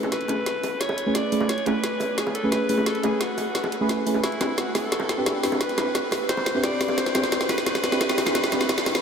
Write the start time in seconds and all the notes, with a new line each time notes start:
0.03 A3 C#4 E4 G#4 B4, high bongo
0.12 B4, snare, closed hi-hat
0.21 closed hi-hat
0.28 A3 C#4 E4 G#4 B4, closed hi-hat, high bongo
0.46 snare, closed hi-hat
0.63 open hi-hat, high bongo
0.80 C#5, snare, closed hi-hat
0.89 high bongo
0.98 closed hi-hat
1.06 A3 C#4 E4 G#4 B4
1.15 D5, snare, closed hi-hat, high bongo
1.32 A3 C#4 E4 G#4 B4, open hi-hat
1.40 A3 C#4 E4 G#4 B4, high bongo
1.49 C#5, snare, closed hi-hat
1.58 closed hi-hat
1.66 A3 C#4 E4 G#4 B4, closed hi-hat, high bongo
1.84 snare, closed hi-hat
2.00 open hi-hat, high bongo
2.18 G#4, snare, closed hi-hat
2.27 high bongo
2.35 A4, closed hi-hat
2.43 A3 C#4 E4 G#4 B4
2.52 B4, snare, closed hi-hat, high bongo
2.69 A3 C#4 E4 G#4 B4, open hi-hat
2.78 A3 C#4 E4 G#4 B4, high bongo
2.86 A4, snare, closed hi-hat
2.95 closed hi-hat
3.03 A3 C#4 E4 G#4 B4, closed hi-hat, high bongo
3.20 F#4, snare, closed hi-hat
3.38 open hi-hat, high bongo
3.55 snare, closed hi-hat
3.64 high bongo
3.72 closed hi-hat
3.80 A3 C#4 E4 G#4 B4
3.89 snare, closed hi-hat, high bongo
4.06 A3 C#4 E4 G#4 B4, open hi-hat
4.14 A3 C#4 E4 G#4 B4, high bongo
4.23 E4, snare, closed hi-hat, riser
4.32 closed hi-hat
4.40 C4 D4 E4 G4 B4, snare, closed hi-hat, high bongo
4.58 F#4, snare, closed hi-hat
4.75 A4, snare, open hi-hat, high bongo
4.92 snare, closed hi-hat
5.00 high bongo
5.09 snare, closed hi-hat
5.17 C4 D4 E4 G4 B4
5.26 snare, closed hi-hat, high bongo
5.43 C4 D4 E4 G4 B4, snare, open hi-hat
5.51 C4 D4 E4 G4 B4, high bongo
5.60 B4, snare, closed hi-hat
5.69 closed hi-hat
5.77 C4 D4 E4 G4 B4, snare, closed hi-hat, high bongo
5.95 snare, closed hi-hat
6.11 snare, open hi-hat, high bongo
6.29 C5, snare, closed hi-hat
6.37 high bongo
6.46 snare, closed hi-hat
6.54 C4 D4 E4 G4 B4
6.63 D5, snare, closed hi-hat, high bongo
6.80 C4 D4 E4 G4 B4, snare, open hi-hat
6.88 C4 D4 E4 G4 B4, high bongo
6.97 C5, snare, closed hi-hat
7.06 snare, closed hi-hat
7.14 C4 D4 E4 G4 B4, snare, closed hi-hat, high bongo
7.24 snare
7.32 snare, closed hi-hat
7.41 snare
7.49 B4, snare, open hi-hat, high bongo
7.58 snare
7.66 snare, closed hi-hat
7.75 snare, high bongo
7.84 snare, closed hi-hat
7.91 C4 D4 E4 G4 B4, snare
8.01 snare, closed hi-hat, high bongo
8.09 snare
8.17 C4 D4 E4 G4 B4, snare, open hi-hat
8.26 C4 D4 E4 G4 B4, snare, high bongo
8.35 snare, closed hi-hat
8.44 snare, closed hi-hat
8.52 C4 D4 E4 G4 B4, snare, closed hi-hat, high bongo
8.61 snare
8.69 snare, closed hi-hat
8.78 snare
8.86 snare, open hi-hat, high bongo
8.95 snare